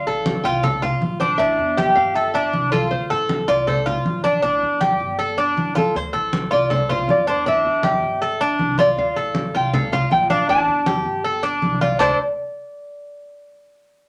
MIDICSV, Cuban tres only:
0, 0, Header, 1, 2, 480
1, 0, Start_track
1, 0, Key_signature, -1, "minor"
1, 0, Tempo, 379027
1, 1768, Time_signature, 4, 2, 24, 8
1, 17841, End_track
2, 0, Start_track
2, 0, Title_t, "Cuban tres"
2, 0, Program_c, 0, 25
2, 88, Note_on_c, 0, 69, 73
2, 553, Note_off_c, 0, 69, 0
2, 569, Note_on_c, 0, 65, 85
2, 801, Note_off_c, 0, 65, 0
2, 803, Note_on_c, 0, 69, 75
2, 1038, Note_off_c, 0, 69, 0
2, 1041, Note_on_c, 0, 65, 73
2, 1511, Note_off_c, 0, 65, 0
2, 1525, Note_on_c, 0, 62, 86
2, 1748, Note_off_c, 0, 62, 0
2, 1763, Note_on_c, 0, 62, 76
2, 2232, Note_off_c, 0, 62, 0
2, 2247, Note_on_c, 0, 67, 77
2, 2714, Note_off_c, 0, 67, 0
2, 2728, Note_on_c, 0, 69, 75
2, 2962, Note_off_c, 0, 69, 0
2, 2972, Note_on_c, 0, 62, 88
2, 3437, Note_off_c, 0, 62, 0
2, 3443, Note_on_c, 0, 65, 86
2, 3912, Note_off_c, 0, 65, 0
2, 3929, Note_on_c, 0, 69, 79
2, 4396, Note_off_c, 0, 69, 0
2, 4407, Note_on_c, 0, 65, 86
2, 4642, Note_off_c, 0, 65, 0
2, 4651, Note_on_c, 0, 69, 72
2, 4884, Note_off_c, 0, 69, 0
2, 4887, Note_on_c, 0, 65, 78
2, 5355, Note_off_c, 0, 65, 0
2, 5367, Note_on_c, 0, 62, 86
2, 5587, Note_off_c, 0, 62, 0
2, 5602, Note_on_c, 0, 62, 79
2, 6072, Note_off_c, 0, 62, 0
2, 6086, Note_on_c, 0, 67, 69
2, 6555, Note_off_c, 0, 67, 0
2, 6569, Note_on_c, 0, 69, 74
2, 6803, Note_off_c, 0, 69, 0
2, 6810, Note_on_c, 0, 62, 87
2, 7277, Note_off_c, 0, 62, 0
2, 7285, Note_on_c, 0, 65, 82
2, 7521, Note_off_c, 0, 65, 0
2, 7764, Note_on_c, 0, 69, 75
2, 8234, Note_off_c, 0, 69, 0
2, 8243, Note_on_c, 0, 65, 82
2, 8480, Note_off_c, 0, 65, 0
2, 8486, Note_on_c, 0, 69, 70
2, 8722, Note_off_c, 0, 69, 0
2, 8732, Note_on_c, 0, 65, 79
2, 9197, Note_off_c, 0, 65, 0
2, 9210, Note_on_c, 0, 62, 91
2, 9436, Note_off_c, 0, 62, 0
2, 9451, Note_on_c, 0, 62, 81
2, 9917, Note_off_c, 0, 62, 0
2, 9928, Note_on_c, 0, 67, 73
2, 10395, Note_off_c, 0, 67, 0
2, 10406, Note_on_c, 0, 69, 76
2, 10641, Note_off_c, 0, 69, 0
2, 10648, Note_on_c, 0, 62, 98
2, 11115, Note_off_c, 0, 62, 0
2, 11128, Note_on_c, 0, 65, 83
2, 11595, Note_off_c, 0, 65, 0
2, 11606, Note_on_c, 0, 69, 75
2, 12074, Note_off_c, 0, 69, 0
2, 12090, Note_on_c, 0, 65, 78
2, 12323, Note_off_c, 0, 65, 0
2, 12330, Note_on_c, 0, 69, 69
2, 12563, Note_off_c, 0, 69, 0
2, 12576, Note_on_c, 0, 65, 75
2, 13039, Note_off_c, 0, 65, 0
2, 13045, Note_on_c, 0, 62, 94
2, 13272, Note_off_c, 0, 62, 0
2, 13287, Note_on_c, 0, 62, 78
2, 13754, Note_off_c, 0, 62, 0
2, 13760, Note_on_c, 0, 67, 76
2, 14230, Note_off_c, 0, 67, 0
2, 14240, Note_on_c, 0, 69, 70
2, 14474, Note_on_c, 0, 62, 87
2, 14477, Note_off_c, 0, 69, 0
2, 14947, Note_off_c, 0, 62, 0
2, 14960, Note_on_c, 0, 65, 78
2, 15187, Note_on_c, 0, 62, 91
2, 15189, Note_off_c, 0, 65, 0
2, 15194, Note_on_c, 0, 69, 80
2, 15201, Note_on_c, 0, 72, 96
2, 15420, Note_off_c, 0, 62, 0
2, 15424, Note_off_c, 0, 69, 0
2, 15428, Note_off_c, 0, 72, 0
2, 17841, End_track
0, 0, End_of_file